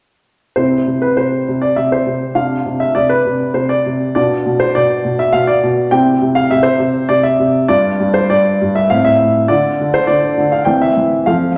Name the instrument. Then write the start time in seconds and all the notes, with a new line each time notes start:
grand piano
0.56 C3 C4 E4 C5
0.87 C3
1.02 B4
1.17 C3 C5
1.48 C3
1.62 D5
1.76 C3 E5
1.92 C5
2.06 C3
2.35 C3 D4 F4 F5
2.66 C3
2.80 E5
2.95 C3 D5
3.09 B4
3.26 C3
3.54 C3 C5
3.69 D5
3.86 C3
4.15 B2 D4 F4 D5
4.46 B2
4.60 C5
4.75 B2 D5
5.05 B2
5.19 E5
5.33 B2 F5
5.47 D5
5.63 B2
5.91 C3 C4 E4 G5
6.22 C3
6.35 F5
6.51 C3 E5
6.63 C5
6.79 C3
7.09 C3 D5
7.23 E5
7.39 C3
7.68 G2 D4 F4 D5
8.00 G2
8.14 C5
8.30 G2 D5
8.61 G2
8.75 E5
8.90 A2 C4 E4 F5
9.05 E5
9.21 A2
9.48 D3 D4 F4 D5
9.81 D3
9.94 C5
10.07 D3 D5
10.38 D3
10.52 F5
10.65 E3 C4 E4 G5
10.82 E5
10.97 E3
11.26 F3 C4 A4 F5